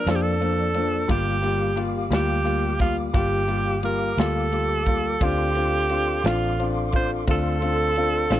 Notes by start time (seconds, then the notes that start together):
Already playing: F3 A#4 D5 E6
0.06 F2 F3 A#3 D4 A4, snare, ride
0.16 G4
0.22 A4
0.40 F3 A#3 D4, ride
0.74 F3 A#3 D4, ride
1.08 G1 G3 A#3 F4 G4 F5 D6, kick, ride
1.42 G3 A#3 F4, ride
1.76 G3 A#3 F4, ride
2.10 D2 G3 A#3 F4 G4, snare, ride
2.44 G3 A#3 F4, ride
2.79 G3 A#3 F4, kick, ride
3.13 G1 G3 A#3 F4 G4, kick, ride
3.48 G3 A#3 F4, ride
3.83 G3 A#3 F4 A#4, ride
4.17 D2 G3 A#3 F4 A4, snare, ride
4.52 G3 A#3 F4, ride
4.86 G3 A#3 F4, kick, ride
5.21 D2 C4 D4 F4 G4 A4 C6 D6, kick, ride
5.55 C4 D4 F4, ride
5.89 C4 D4 F4, ride
6.24 A1 C4 D4 F4, snare, ride
6.59 C4 D4 F4, ride
6.92 C4 D4 F4 C5, kick, ride
7.27 D2 C4 D4 F4 A4 E6, kick, ride
7.62 C4 D4 F4, ride
7.96 C4 D4 F4, ride
8.30 A1 C4 D4 F4, snare, ride